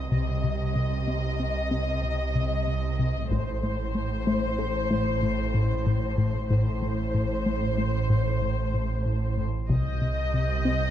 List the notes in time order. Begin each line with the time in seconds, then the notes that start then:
Already playing: impact
0.12 C2 C3 D#5
0.44 C3
0.76 C3
1.07 C4
1.40 C4
1.71 C3
2.03 C3
2.35 C3
2.67 C3
2.99 C3
3.30 A1 A2 C5, taiko
3.63 A2
3.95 A2
4.27 A3
4.59 A3
4.90 A2
5.22 A2
5.54 A2
5.86 A2
6.18 A2
6.50 A1 A2 C5
6.82 A2
7.14 A2
7.46 A3
7.78 A3
8.10 A2
8.42 A2
8.74 A2
9.06 A2
9.38 A2
9.69 C2 C3 D#5 D#6 G6 A#6, taiko
10.01 C3
10.34 C3
10.65 C4